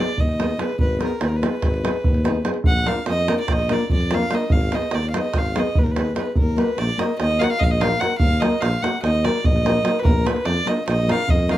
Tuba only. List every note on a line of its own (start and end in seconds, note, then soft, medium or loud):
0.17 0.54 D#2 medium
0.78 1.04 G#1 medium
1.20 1.46 D#2 medium
1.63 1.88 G#1 medium
2.05 2.41 D#2 medium
2.64 2.90 A#1 medium
3.07 3.32 F2 medium
3.49 3.74 A#1 medium
3.91 4.27 F2 medium
4.50 4.76 G#1 loud
4.92 5.18 D#2 medium
5.34 5.59 G#1 medium
5.76 6.12 D#2 medium
6.35 6.61 D#2 medium
6.77 6.91 A#1 medium
7.20 7.44 D#2 medium
7.60 7.96 A#1 loud
8.20 8.45 D#2 medium
8.62 8.75 A#1 medium
9.03 9.28 D#2 loud
9.44 9.80 A#1 medium
10.04 10.29 A#1 medium
10.46 10.59 F2 loud
10.87 11.12 A#1 loud
11.28 11.58 F2 loud